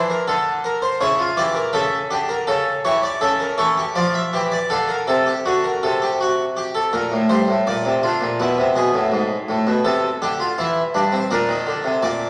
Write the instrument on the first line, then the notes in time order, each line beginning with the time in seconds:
harpsichord
Already playing: E3 D4
0.10 A#4
0.28 D3 A4
0.64 A#4
0.82 C5
1.01 C#3 E4 C#5
1.19 F4
1.37 E3 G4 D5
1.55 A#4
1.73 C#3 A4 E5
2.10 D3 G4
2.29 A#4
2.47 C#3 A4
2.85 E3 G4 C#5
3.03 D5
3.21 C#3 A4 E5
3.40 A#4
3.58 E3 A4 C#5
3.77 G4
3.95 F3 F4 D5
4.14 E5
4.33 E3 G4
4.52 D5
4.70 D3 A4 F5
4.89 A#4
5.07 C3 A4
5.26 G4
5.46 D3 F#4
5.64 A#4
5.83 C3 A4
6.02 G4
6.21 F#4
6.57 G4
6.75 A4
6.93 A#2 A#4
7.12 A2
7.29 G2 C5
7.48 A2
7.67 A#2 D5
7.85 C3
8.03 D3 F4
8.21 A#2
8.40 B2 E4
8.58 C3
8.76 B2 G#4
8.93 A2
9.12 G#2
9.49 A2
9.67 B2
9.85 C3 A4
10.22 D3 G4
10.40 F4
10.58 E3 E4
10.94 G2 D4
11.12 C4
11.31 A#2 D4 A#4
11.49 D#3
11.67 D3
11.84 C3
12.03 A#2 D5